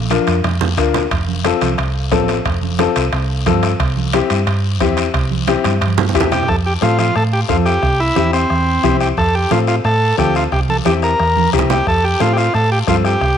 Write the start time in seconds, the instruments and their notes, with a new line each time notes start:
Already playing: fingered electric bass A#1
0.10 upright piano D4 F4 A#4, bombo rim, high conga, high timbale, short guiro
0.27 fingered electric bass F2, bombo rim, high timbale, short guiro
0.44 fingered electric bass F2, bombo rim, low conga, high timbale, long guiro
0.61 low conga
0.77 fingered electric bass D2, upright piano D4 F4 A#4, bombo low, bombo rim, high timbale, short guiro
0.94 bombo rim, low conga, high timbale, short guiro
1.11 fingered electric bass F1, bombo low, bombo rim, high conga, high timbale, long guiro
1.28 high conga
1.44 upright piano C4 F4 A4, bombo rim, high conga, high timbale, short guiro
1.61 fingered electric bass C2, bombo rim, high conga, high timbale, short guiro
1.78 fingered electric bass C2, bombo rim, high conga, high timbale, long guiro
2.11 fingered electric bass A1, upright piano C4 F4 A4, bombo low, bombo rim, high conga, high timbale, low timbale, short guiro
2.28 bombo rim, high timbale, short guiro
2.45 fingered electric bass F1, bombo low, bombo rim, high conga, high timbale, long guiro
2.62 high conga
2.79 upright piano C4 F4 A4, bombo rim, high conga, high timbale, short guiro
2.96 fingered electric bass C2, bombo rim, high timbale, short guiro
3.12 fingered electric bass C2, bombo rim, high conga, high timbale, long guiro
3.46 fingered electric bass G2, upright piano C4 F4 A4, bombo low, bombo rim, high conga, high timbale, short guiro
3.63 bombo rim, high timbale, short guiro
3.80 fingered electric bass C2, bombo low, bombo rim, high conga, high timbale, long guiro
3.97 high conga
4.13 upright piano C4 E4 G4, bombo rim, high conga, high timbale, short guiro
4.30 fingered electric bass G2, bombo rim, high timbale, short guiro
4.47 fingered electric bass G2, bombo rim, high conga, high timbale, long guiro
4.80 fingered electric bass E2, upright piano C4 E4 G4, bombo low, bombo rim, high conga, high timbale, short guiro
4.97 bombo rim, high timbale, short guiro
5.14 fingered electric bass C2, bombo low, bombo rim, high conga, high timbale, long guiro
5.31 high conga
5.48 upright piano C4 E4 G4, bombo rim, high conga, high timbale, short guiro
5.64 fingered electric bass G2, bombo rim, high conga, high timbale, short guiro
5.81 fingered electric bass G2, bombo rim, high timbale, long guiro
5.87 high conga
5.98 low conga
6.09 low conga
6.14 fingered electric bass E2, upright piano C4 E4 G4, bombo low, bombo rim, high timbale, short guiro
6.20 low conga
6.32 transistor combo organ G4, bombo rim, low conga, high timbale, short guiro
6.43 low conga
6.48 fingered electric bass F2, transistor combo organ A4, bombo low, bombo rim, high conga, long guiro
6.66 transistor combo organ G4
6.81 fingered electric bass A2, upright piano C4 F4 A4, transistor combo organ F4, bombo rim, high conga, short guiro
6.99 transistor combo organ F4, bombo rim, high conga, short guiro
7.15 fingered electric bass A2, transistor combo organ A4, bombo rim, long guiro
7.33 transistor combo organ G4
7.49 fingered electric bass F2, upright piano C4 F4 A4, transistor combo organ F4, bombo low, bombo rim, high conga, short guiro
7.65 transistor combo organ G4, bombo rim, short guiro
7.83 fingered electric bass C2, bombo low, bombo rim, high conga, long guiro
8.00 transistor combo organ E4
8.16 fingered electric bass E2, upright piano C4 E4 G4, bombo rim, high conga, short guiro
8.33 transistor combo organ C4, bombo rim, short guiro
8.50 fingered electric bass E2, bombo rim, long guiro
8.84 fingered electric bass C2, upright piano C4 E4 G4, bombo low, bombo rim, high conga, short guiro
9.00 transistor combo organ G4, bombo rim, short guiro
9.17 fingered electric bass F2, transistor combo organ A4, bombo low, bombo rim, high conga, long guiro
9.35 transistor combo organ G4
9.51 fingered electric bass A2, upright piano C4 F4 A4, transistor combo organ F4, bombo rim, high conga, short guiro
9.67 transistor combo organ F4, bombo rim, short guiro
9.84 fingered electric bass A2, transistor combo organ A4, bombo rim, high conga, long guiro
10.18 fingered electric bass D2, upright piano C4 F4 A4, transistor combo organ G4, bombo low, bombo rim, high conga, short guiro
10.35 transistor combo organ F4, bombo rim, short guiro
10.52 fingered electric bass C2, transistor combo organ G4, bombo low, bombo rim, high conga, long guiro
10.69 transistor combo organ A4, high conga
10.85 fingered electric bass E2, upright piano C4 E4 G4, transistor combo organ G4, bombo rim, high conga, short guiro
11.02 transistor combo organ A#4, bombo rim, short guiro
11.19 fingered electric bass E2, bombo rim, high conga, long guiro
11.37 high conga
11.53 fingered electric bass C2, upright piano C4 E4 G4, bombo low, bombo rim, short guiro
11.59 low conga
11.70 transistor combo organ G4, bombo rim, low conga, short guiro
11.87 fingered electric bass F2, transistor combo organ A4, bombo low, bombo rim, long guiro
12.04 transistor combo organ G4
12.20 fingered electric bass A2, upright piano C4 F4 A4, transistor combo organ F4, bombo rim, high conga, short guiro
12.33 transistor combo organ G4, bombo rim
12.38 transistor combo organ F4, short guiro
12.54 fingered electric bass A2, transistor combo organ A4, bombo rim, high conga, long guiro
12.72 transistor combo organ G4
12.87 fingered electric bass G2, upright piano C4 F4 A4, transistor combo organ F4, bombo low, bombo rim, high conga, short guiro
13.05 transistor combo organ G4, bombo rim, short guiro
13.21 fingered electric bass C2, bombo low, bombo rim, high conga, long guiro